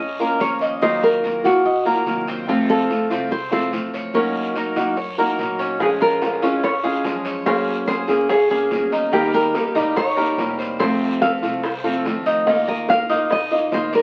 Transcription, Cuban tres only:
Already playing: C#4
0.20 A#4
0.61 D#5
0.82 D#4
1.24 A#4
1.66 D#5
1.86 A#4
2.28 C4
2.48 A4
2.70 F4
3.11 C4
3.53 A4
3.94 C#5
4.15 C#4
4.56 A#4
4.97 C#5
5.18 A#4
5.59 C#4
5.80 G#4
6.01 F4
6.42 C#4
6.84 G#4
7.25 C#5
7.46 C#4
7.88 G#4
8.30 C#5
8.51 G#4
8.92 D#4
9.13 A#4
9.33 G4
9.75 D#4
10.16 A#4
10.59 C5
10.79 C4
11.22 A4
11.63 C5
11.84 A4
12.26 D#4
12.47 D#5
12.67 A#4
13.10 D#4
13.51 D#5
13.93 D5

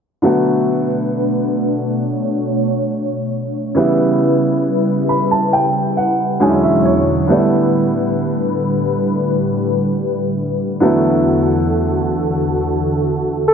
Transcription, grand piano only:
0.22 D3 F#3 A3 B3
0.26 F#4
3.75 C#3 E3 G3 B3
3.79 E4
5.09 B5
5.31 A5
5.53 G5
5.97 F#5
6.40 D3 F#3 G#3 C#4 D#4 G#5
6.49 E4
6.63 E5
6.85 C#5
7.27 D3 G3 A3 B3
7.32 D4
7.38 E4
10.80 D3 F#3 A3 B3
10.85 E4

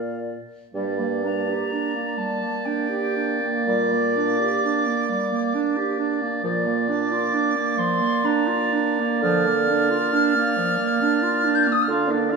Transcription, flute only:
Already playing: D5
1.24 A#5
2.18 A5
2.65 G5
3.68 D6
6.89 D6
7.78 C6
8.25 A#5
9.22 F6
11.55 G6
11.64 F6
11.72 D#6
11.82 F6

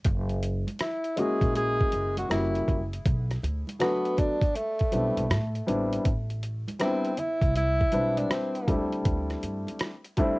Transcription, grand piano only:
1.16 G#3 A#3 C#4 E4 F#4
2.29 G3 A#3 C#4 E4 F#4
3.79 F#3 A3 B3 D4 F#4
4.92 G3 B3 C4 D4 E4
5.67 G3 B3 C4 D4 E4
6.79 G3 B3 C4 D4 E4
7.92 G3 C4 D4 E4 B4
8.67 G3 A3 C4 D4 E4
10.17 G3 A3 C4 D4 E4

